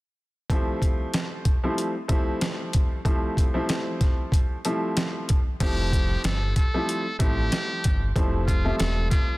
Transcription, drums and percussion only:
0.50 kick loud
0.50 closed hi-hat medium
0.82 kick medium
0.82 closed hi-hat medium
1.14 snare loud
1.14 closed hi-hat medium
1.45 kick medium
1.45 closed hi-hat medium
1.78 closed hi-hat medium
2.09 kick loud
2.09 closed hi-hat medium
2.41 snare loud
2.41 closed hi-hat loud
2.73 kick medium
2.73 closed hi-hat medium
3.05 kick loud
3.05 closed hi-hat medium
3.37 kick medium
3.37 closed hi-hat medium
3.69 snare loud
3.69 closed hi-hat medium
4.01 kick medium
4.01 snare soft
4.01 closed hi-hat medium
4.32 kick medium
4.32 closed hi-hat medium
4.65 closed hi-hat medium
4.97 snare loud
4.97 closed hi-hat loud
5.29 kick medium
5.29 closed hi-hat medium
5.60 kick loud
5.60 closed hi-hat medium
5.60 crash medium
5.92 kick medium
5.92 closed hi-hat medium
6.24 snare loud
6.24 closed hi-hat medium
6.56 kick loud
6.56 closed hi-hat medium
6.89 closed hi-hat medium
7.20 kick loud
7.20 closed hi-hat medium
7.52 snare loud
7.52 closed hi-hat loud
7.84 kick medium
7.84 closed hi-hat medium
8.16 kick loud
8.16 closed hi-hat medium
8.48 kick medium
8.48 closed hi-hat medium
8.80 snare loud
8.80 closed hi-hat medium
9.11 kick loud
9.11 snare soft
9.11 closed hi-hat medium

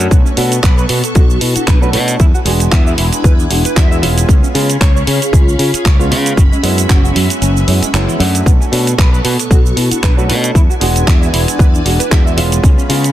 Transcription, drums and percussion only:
0.00 shaker medium
0.11 kick loud
0.11 closed hi-hat medium
0.11 shaker medium
0.26 shaker soft
0.37 open hi-hat loud
0.52 closed hi-hat medium
0.52 shaker medium
0.63 kick loud
0.63 clap loud
0.63 closed hi-hat soft
0.63 shaker medium
0.78 shaker soft
0.89 open hi-hat loud
1.04 closed hi-hat medium
1.04 shaker medium
1.15 kick loud
1.15 closed hi-hat soft
1.15 shaker medium
1.30 shaker soft
1.41 open hi-hat loud
1.56 closed hi-hat medium
1.56 shaker medium
1.67 kick loud
1.67 clap loud
1.67 closed hi-hat medium
1.67 shaker medium
1.82 shaker soft
1.93 open hi-hat loud
2.08 closed hi-hat medium
2.08 shaker medium
2.20 kick loud
2.20 closed hi-hat medium
2.20 shaker medium
2.35 shaker soft
2.46 open hi-hat loud
2.60 closed hi-hat medium
2.60 shaker medium
2.72 kick loud
2.72 clap loud
2.72 closed hi-hat medium
2.72 shaker medium
2.87 shaker soft
2.98 open hi-hat loud
3.13 closed hi-hat medium
3.13 shaker medium
3.24 kick loud
3.24 closed hi-hat medium
3.24 shaker medium
3.39 shaker soft
3.51 open hi-hat loud
3.65 closed hi-hat medium
3.65 shaker medium
3.76 kick loud
3.76 clap loud
3.76 closed hi-hat medium
3.76 shaker medium
3.92 shaker soft
4.03 open hi-hat loud
4.18 closed hi-hat medium
4.18 shaker medium
4.29 kick loud
4.29 closed hi-hat medium
4.29 shaker medium
4.44 shaker soft
4.55 open hi-hat loud
4.70 closed hi-hat medium
4.70 shaker medium
4.81 kick loud
4.81 clap loud
4.81 closed hi-hat medium
4.81 shaker medium
4.97 shaker soft
5.07 open hi-hat loud
5.22 closed hi-hat medium
5.22 shaker medium
5.33 kick loud
5.33 closed hi-hat medium
5.33 shaker medium
5.49 shaker soft
5.59 open hi-hat loud
5.74 closed hi-hat medium
5.74 shaker medium
5.85 kick loud
5.85 clap loud
5.85 closed hi-hat medium
5.85 shaker medium
6.01 shaker soft
6.12 open hi-hat loud
6.26 closed hi-hat medium
6.26 shaker medium
6.37 kick loud
6.37 closed hi-hat medium
6.37 shaker medium
6.53 shaker soft
6.64 open hi-hat loud
6.78 closed hi-hat medium
6.78 shaker medium
6.89 kick loud
6.89 clap loud
6.89 closed hi-hat medium
6.89 shaker medium
7.05 shaker soft
7.16 open hi-hat loud
7.30 closed hi-hat medium
7.30 shaker medium
7.42 closed hi-hat medium
7.42 shaker medium
7.57 shaker soft
7.68 open hi-hat loud
7.83 closed hi-hat medium
7.83 shaker medium
7.94 clap loud
7.94 closed hi-hat medium
7.94 shaker medium
8.09 shaker soft
8.20 open hi-hat loud
8.35 closed hi-hat medium
8.35 shaker medium
8.46 kick loud
8.46 closed hi-hat medium
8.46 shaker medium
8.62 shaker soft
8.73 open hi-hat loud
8.87 closed hi-hat medium
8.87 shaker medium
8.98 kick loud
8.98 clap loud
8.98 closed hi-hat medium
8.98 shaker medium
9.14 shaker soft
9.25 open hi-hat loud
9.39 closed hi-hat medium
9.39 shaker medium
9.51 kick loud
9.51 closed hi-hat medium
9.51 shaker medium
9.66 shaker soft
9.77 open hi-hat loud
9.91 closed hi-hat medium
9.91 shaker medium
10.03 kick loud
10.03 clap loud
10.03 closed hi-hat medium
10.03 shaker medium
10.19 shaker soft
10.30 open hi-hat loud
10.44 closed hi-hat medium
10.44 shaker medium
10.55 kick loud
10.55 closed hi-hat medium
10.55 shaker medium
10.71 shaker soft
10.81 open hi-hat loud
10.96 closed hi-hat medium
10.96 shaker medium
11.07 kick loud
11.07 clap loud
11.07 closed hi-hat medium
11.07 shaker medium
11.23 shaker soft
11.34 open hi-hat loud
11.48 closed hi-hat medium
11.48 shaker medium
11.59 kick loud
11.59 closed hi-hat medium
11.59 shaker medium
11.75 shaker soft
11.86 open hi-hat loud
12.00 closed hi-hat medium
12.00 shaker medium
12.11 kick loud
12.11 clap loud
12.11 closed hi-hat medium
12.11 shaker medium
12.27 shaker soft
12.38 open hi-hat loud
12.52 closed hi-hat medium
12.52 shaker medium
12.64 kick loud
12.64 closed hi-hat soft
12.64 shaker medium
12.79 shaker soft
12.90 open hi-hat loud
13.04 closed hi-hat medium
13.04 shaker medium

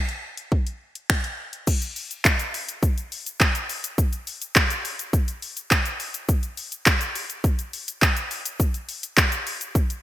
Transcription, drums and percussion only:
0.09 closed hi-hat medium
0.37 closed hi-hat medium
0.52 kick loud
0.67 closed hi-hat soft
0.95 closed hi-hat medium
1.10 finger snap loud
1.10 kick loud
1.24 closed hi-hat medium
1.53 closed hi-hat medium
1.67 kick loud
1.67 crash loud
1.67 shaker medium
1.82 closed hi-hat soft
1.82 shaker soft
1.96 open hi-hat medium
1.96 shaker soft
2.11 closed hi-hat medium
2.11 shaker medium
2.25 kick loud
2.25 clap loud
2.25 shaker medium
2.39 closed hi-hat medium
2.39 shaker medium
2.54 open hi-hat medium
2.54 shaker medium
2.69 closed hi-hat medium
2.69 shaker medium
2.83 kick loud
2.83 shaker medium
2.98 closed hi-hat soft
2.98 shaker soft
3.12 open hi-hat medium
3.12 shaker soft
3.26 closed hi-hat medium
3.26 shaker medium
3.40 kick loud
3.40 clap loud
3.40 shaker medium
3.55 closed hi-hat medium
3.55 shaker medium
3.69 open hi-hat medium
3.69 shaker medium
3.84 closed hi-hat medium
3.84 shaker medium
3.98 kick loud
3.98 shaker medium
4.13 closed hi-hat soft
4.13 shaker soft
4.27 open hi-hat medium
4.27 shaker soft
4.42 closed hi-hat medium
4.42 shaker medium
4.56 kick loud
4.56 clap loud
4.56 shaker medium
4.70 closed hi-hat medium
4.70 shaker medium
4.85 open hi-hat medium
4.85 shaker medium
4.99 closed hi-hat medium
4.99 shaker medium
5.13 kick loud
5.13 shaker medium
5.28 closed hi-hat soft
5.28 shaker soft
5.42 open hi-hat medium
5.42 shaker soft
5.57 closed hi-hat medium
5.57 shaker medium
5.71 kick loud
5.71 clap loud
5.71 shaker medium
5.85 closed hi-hat medium
5.85 shaker medium
6.00 open hi-hat medium
6.00 shaker medium
6.14 closed hi-hat medium
6.14 shaker medium
6.29 kick loud
6.29 shaker medium
6.43 closed hi-hat soft
6.43 shaker medium
6.57 open hi-hat medium
6.57 shaker soft
6.72 closed hi-hat medium
6.72 shaker medium
6.86 kick loud
6.86 clap loud
6.86 shaker medium
7.01 closed hi-hat medium
7.01 shaker medium
7.15 open hi-hat medium
7.15 shaker medium
7.30 closed hi-hat medium
7.30 shaker medium
7.44 kick loud
7.44 shaker medium
7.59 closed hi-hat medium
7.59 shaker medium
7.73 open hi-hat medium
7.73 shaker soft
7.88 closed hi-hat medium
7.88 shaker medium
8.02 kick loud
8.02 clap loud
8.02 shaker medium
8.17 closed hi-hat medium
8.17 shaker medium
8.31 open hi-hat medium
8.31 shaker medium
8.45 closed hi-hat medium
8.45 shaker medium
8.60 kick loud
8.60 shaker medium
8.74 closed hi-hat soft
8.74 shaker medium
8.89 open hi-hat medium
8.89 shaker soft
9.03 closed hi-hat medium
9.03 shaker medium
9.17 kick loud
9.17 clap loud
9.17 shaker medium
9.32 closed hi-hat medium
9.32 shaker medium
9.47 open hi-hat medium
9.47 shaker medium
9.61 closed hi-hat medium
9.61 shaker medium
9.75 kick loud
9.75 shaker medium
9.90 closed hi-hat soft
9.90 shaker medium

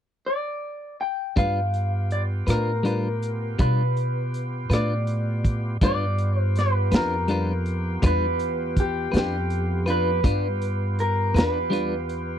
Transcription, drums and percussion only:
1.37 kick medium
1.37 closed hi-hat medium
1.74 closed hi-hat soft
2.11 closed hi-hat soft
2.47 cross-stick medium
2.47 closed hi-hat medium
2.85 closed hi-hat soft
3.22 closed hi-hat soft
3.59 kick medium
3.59 closed hi-hat medium
3.97 closed hi-hat soft
4.34 closed hi-hat soft
4.71 cross-stick medium
4.71 closed hi-hat medium
5.07 closed hi-hat soft
5.45 kick medium
5.45 closed hi-hat soft
5.81 kick medium
5.81 closed hi-hat medium
6.18 closed hi-hat medium
6.55 snare soft
6.55 closed hi-hat medium
6.92 snare loud
6.92 closed hi-hat medium
7.28 closed hi-hat medium
7.66 closed hi-hat medium
8.02 kick medium
8.02 closed hi-hat medium
8.39 closed hi-hat medium
8.76 kick medium
8.76 closed hi-hat medium
9.14 snare medium
9.14 closed hi-hat medium
9.50 closed hi-hat medium
9.87 closed hi-hat medium
10.24 kick loud
10.24 closed hi-hat medium
10.61 closed hi-hat medium
10.99 closed hi-hat medium
11.36 snare medium
11.36 closed hi-hat medium
11.73 closed hi-hat medium
12.09 closed hi-hat soft

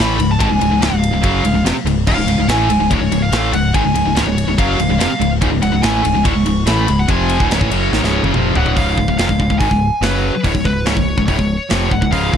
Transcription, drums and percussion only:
0.20 ride medium
0.40 kick loud
0.40 ride loud
0.61 ride medium
0.82 snare loud
0.82 ride loud
1.04 ride medium
1.23 kick loud
1.23 ride loud
1.45 ride medium
1.66 snare loud
1.66 ride loud
1.87 ride medium
2.07 kick loud
2.07 crash loud
2.28 ride medium
2.49 snare loud
2.49 ride loud
2.70 ride medium
2.91 kick loud
2.91 ride loud
3.12 ride medium
3.33 snare loud
3.33 ride loud
3.53 ride medium
3.74 kick loud
3.74 ride loud
3.95 ride medium
4.16 snare loud
4.16 ride loud
4.38 ride medium
4.58 kick loud
4.58 ride loud
4.80 ride medium
5.00 snare loud
5.00 ride loud
5.21 ride medium
5.42 kick loud
5.42 ride loud
5.63 ride medium
5.83 snare loud
5.83 ride loud
6.05 ride medium
6.25 kick loud
6.25 ride loud
6.46 ride medium
6.67 snare loud
6.67 ride loud
6.88 ride medium
7.08 kick loud
7.08 ride loud
7.29 ride medium
7.40 kick loud
7.51 snare loud
7.51 ride loud
7.61 kick loud
7.71 ride medium
7.93 snare medium
8.04 snare medium
8.24 high tom medium
8.34 mid tom medium
8.56 floor tom medium
8.66 floor tom medium
8.77 kick loud
8.77 open hi-hat medium
8.98 kick medium
9.08 kick medium
9.19 snare loud
9.19 open hi-hat medium
9.29 kick medium
9.40 kick medium
9.50 kick medium
9.61 kick loud
9.61 open hi-hat medium
9.71 kick medium
10.03 snare loud
10.03 open hi-hat medium
10.44 kick loud
10.44 open hi-hat medium
10.55 kick medium
10.65 kick medium
10.86 snare loud
10.86 open hi-hat medium
10.97 kick medium
11.18 kick medium
11.28 kick loud
11.28 open hi-hat medium
11.39 kick medium
11.70 snare loud
11.70 open hi-hat medium
11.91 kick medium
12.02 kick medium
12.13 kick medium
12.13 open hi-hat medium
12.34 kick medium

